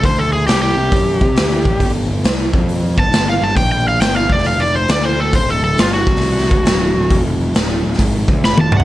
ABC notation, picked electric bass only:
X:1
M:4/4
L:1/8
Q:"Swing" 1/4=136
K:G
V:1 name="Picked electric bass" clef=bass
D,,2 C,, C,, F,, C, D,, A,,, | G,,, G,,, C,, =F,,2 G,,, G,,, G,,, | _B,,,2 G,,, =F,,,3 D,,2 | D,,, D,,, G,,, C,,2 D,,, D,,, D,,, |
=F,,,2 D,,, D,,, ^G,,, D,, F,,, C,, |]